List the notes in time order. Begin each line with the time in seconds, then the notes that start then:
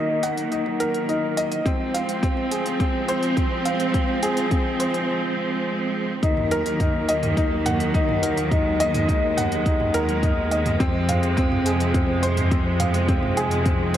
Already playing: D#3 F#3 A#3 D#4 A#4 D#5 F#5
0.23 F#5, closed hi-hat, mid tom
0.37 closed hi-hat
0.51 D#4, closed hi-hat
0.66 mid tom
0.80 A#4, closed hi-hat
0.94 closed hi-hat
1.09 D#4, closed hi-hat, mid tom
1.37 D#5, closed hi-hat
1.52 closed hi-hat, mid tom
1.65 F3 G#3 C4, kick, closed hi-hat
1.94 F5, closed hi-hat, mid tom
2.09 closed hi-hat
2.23 C4, kick, closed hi-hat
2.37 mid tom
2.51 G#4, closed hi-hat
2.66 closed hi-hat
2.80 C4, kick, closed hi-hat, mid tom
3.08 C5, closed hi-hat
3.23 closed hi-hat, mid tom
3.37 C4, kick, closed hi-hat
3.65 F5, closed hi-hat, mid tom
3.80 closed hi-hat
3.94 C4, kick, closed hi-hat
4.08 mid tom
4.23 G#4, closed hi-hat
4.37 closed hi-hat
4.51 C4, kick, closed hi-hat, mid tom
4.80 C5, closed hi-hat
4.94 closed hi-hat, mid tom
6.23 D#2 D#3 F#3 A#3 D#4, kick, closed hi-hat
6.37 mid tom
6.51 A#4, closed hi-hat
6.66 closed hi-hat
6.80 D#4, kick, closed hi-hat, mid tom
7.09 D#5, closed hi-hat
7.23 closed hi-hat, mid tom
7.37 D#4, kick, closed hi-hat
7.66 F#5, closed hi-hat, mid tom
7.80 closed hi-hat
7.94 D#4, kick, closed hi-hat
8.09 mid tom
8.23 A#4, closed hi-hat
8.37 closed hi-hat
8.51 G#3 D#4, kick, closed hi-hat, mid tom
8.80 D#5, closed hi-hat
8.94 closed hi-hat, mid tom
9.09 D#4, kick, closed hi-hat
9.37 F#5, closed hi-hat, mid tom
9.52 closed hi-hat
9.66 D#4, kick, closed hi-hat
9.80 mid tom
9.94 A#4, closed hi-hat
10.09 closed hi-hat
10.23 D#4, kick, closed hi-hat, mid tom
10.51 D#5, closed hi-hat
10.66 closed hi-hat, mid tom
10.80 F2 C3 F3 C4, kick, closed hi-hat
11.09 F5, closed hi-hat, mid tom
11.23 closed hi-hat
11.37 C4, kick, closed hi-hat
11.52 mid tom
11.66 G#4, closed hi-hat
11.80 closed hi-hat
11.94 C4, kick, closed hi-hat, mid tom
12.23 C5, closed hi-hat
12.37 closed hi-hat, mid tom
12.51 C4, kick, closed hi-hat
12.80 F5, closed hi-hat, mid tom
12.94 closed hi-hat
13.08 D#3 C4, kick, closed hi-hat
13.23 mid tom
13.37 G#4, closed hi-hat
13.51 closed hi-hat
13.65 C4, kick, closed hi-hat, mid tom